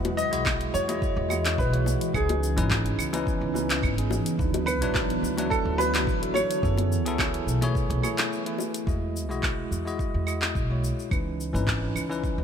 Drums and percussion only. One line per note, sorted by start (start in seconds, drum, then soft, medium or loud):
0.05 closed hi-hat soft
0.05 high bongo loud
0.18 cabasa medium
0.33 closed hi-hat medium
0.33 cabasa soft
0.46 kick loud
0.46 clap medium
0.46 high bongo medium
0.46 cabasa soft
0.46 claves medium
0.61 closed hi-hat soft
0.75 cabasa medium
0.89 closed hi-hat medium
0.89 high bongo medium
0.89 cabasa soft
1.02 kick loud
1.02 cabasa soft
1.30 high bongo medium
1.30 cabasa medium
1.30 claves medium
1.46 clap medium
1.46 closed hi-hat medium
1.46 cabasa soft
1.58 kick loud
1.58 cabasa soft
1.74 closed hi-hat soft
1.86 high bongo medium
1.86 cabasa medium
2.01 closed hi-hat medium
2.01 cabasa soft
2.14 kick loud
2.14 cabasa soft
2.14 claves medium
2.29 closed hi-hat soft
2.29 high bongo medium
2.43 cabasa medium
2.58 closed hi-hat medium
2.58 cabasa soft
2.71 kick loud
2.71 clap medium
2.71 high bongo medium
2.71 cabasa soft
2.86 closed hi-hat soft
2.99 cabasa medium
2.99 claves medium
3.13 closed hi-hat medium
3.13 high bongo medium
3.13 cabasa soft
3.27 kick loud
3.27 cabasa soft
3.55 high bongo medium
3.55 cabasa medium
3.70 clap medium
3.70 closed hi-hat medium
3.70 cabasa soft
3.83 kick loud
3.83 cabasa soft
3.83 claves medium
3.98 closed hi-hat soft
4.11 high bongo loud
4.11 cabasa medium
4.26 closed hi-hat medium
4.26 cabasa soft
4.39 kick loud
4.39 cabasa soft
4.54 closed hi-hat soft
4.54 high bongo medium
4.67 cabasa medium
4.67 claves medium
4.82 closed hi-hat medium
4.82 cabasa soft
4.94 kick loud
4.94 clap medium
4.94 high bongo medium
4.94 cabasa soft
5.10 closed hi-hat soft
5.24 cabasa medium
5.38 closed hi-hat medium
5.38 high bongo medium
5.38 cabasa soft
5.51 kick loud
5.51 cabasa soft
5.51 claves medium
5.79 high bongo medium
5.79 cabasa medium
5.95 clap medium
5.95 closed hi-hat medium
5.95 cabasa soft
6.07 kick loud
6.07 cabasa soft
6.23 closed hi-hat soft
6.35 high bongo medium
6.35 cabasa medium
6.35 claves medium
6.51 closed hi-hat medium
6.51 cabasa soft
6.63 kick loud
6.63 cabasa soft
6.77 closed hi-hat soft
6.77 high bongo medium
6.92 cabasa medium
7.06 closed hi-hat medium
7.06 cabasa soft
7.18 kick loud
7.18 clap medium
7.18 high bongo medium
7.18 cabasa soft
7.18 claves medium
7.34 closed hi-hat soft
7.48 cabasa medium
7.62 closed hi-hat medium
7.62 high bongo medium
7.62 cabasa soft
7.75 kick loud
7.75 cabasa soft
7.91 closed hi-hat soft
8.03 high bongo medium
8.03 cabasa medium
8.03 claves medium
8.18 clap medium
8.18 closed hi-hat medium
8.18 cabasa soft
8.33 cabasa soft
8.46 closed hi-hat soft
8.58 high bongo medium
8.58 cabasa medium
8.74 closed hi-hat medium
8.74 cabasa soft
8.87 kick medium
8.87 cabasa soft
9.16 cabasa medium
9.31 cabasa soft
9.43 kick loud
9.43 clap medium
9.43 cabasa soft
9.43 claves medium
9.72 cabasa medium
9.87 cabasa soft
9.99 kick loud
9.99 cabasa soft
10.27 cabasa medium
10.27 claves medium
10.42 clap medium
10.42 cabasa soft
10.55 kick loud
10.55 cabasa soft
10.84 cabasa medium
10.99 cabasa soft
11.11 kick loud
11.11 cabasa soft
11.11 claves medium
11.40 cabasa medium
11.55 cabasa soft
11.68 kick medium
11.68 clap medium
11.68 cabasa soft
11.96 cabasa medium
11.96 claves medium
12.12 cabasa soft
12.24 kick loud
12.24 cabasa soft